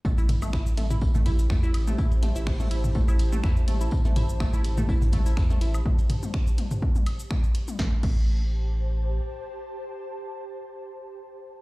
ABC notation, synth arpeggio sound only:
X:1
M:4/4
L:1/16
Q:"Swing 16ths" 1/4=124
K:Am
V:1 name="Synth arpeggio sound"
A, E z A, E z A, E z A, E z A, E z A, | E z A, E z A, E z A, E z A, E z A, E | z A, E z A, E z A, E z A, E z A, E z | z16 |
A, z A, z12 z | z16 |]